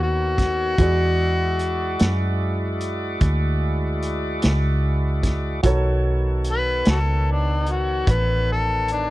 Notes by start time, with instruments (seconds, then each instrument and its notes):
Already playing: fingered electric bass D#2, tonewheel organ D#3 B3 A4 C#5
0.03 harmonica F#4
0.38 kick, snare, closed hi-hat
0.78 fingered electric bass E2, tonewheel organ G#3 E4 F#4 D5, upright piano F#4 G#4 D5, kick, closed hi-hat
1.59 closed hi-hat
1.99 fingered electric bass F#2, snare, closed hi-hat
2.80 closed hi-hat
3.21 fingered electric bass D2, kick, closed hi-hat
4.02 closed hi-hat
4.42 fingered electric bass C#2, snare, closed hi-hat
5.23 kick, snare, closed hi-hat
5.63 fingered electric bass B1, tonewheel organ D#3 B3 A4 C#5, upright piano F#4 A4 C#5, kick, closed hi-hat
6.44 closed hi-hat
6.52 harmonica B4
6.85 fingered electric bass C#2, snare, closed hi-hat
6.90 harmonica F#4 A4
7.32 harmonica D4
7.66 closed hi-hat
7.71 harmonica F#4
8.07 fingered electric bass A1, harmonica B4, kick, closed hi-hat
8.52 harmonica A4
8.88 closed hi-hat
8.92 harmonica D4